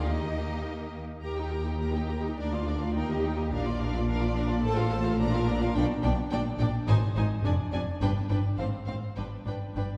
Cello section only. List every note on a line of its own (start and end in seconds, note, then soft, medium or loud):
0.03 1.02 D#3 soft
1.23 2.34 D#2 medium
2.38 2.94 D2 medium
2.95 3.52 D#2 medium
3.52 4.64 A#2 medium
4.64 5.19 A2 medium
5.20 5.76 A#2 medium
5.76 5.84 B2 medium
6.04 6.12 B2 medium
6.32 6.40 A#2 medium
6.60 6.68 A#2 medium
6.88 6.96 G#2 medium
7.16 7.24 G#2 medium
7.44 7.52 F2 medium
7.72 7.80 F2 medium
8.01 8.09 G2 medium
8.29 8.37 G2 medium
8.58 8.66 G#2 medium
8.87 8.95 G#2 medium
9.16 9.24 G2 medium
9.46 9.54 G2 medium
9.76 9.84 G2 medium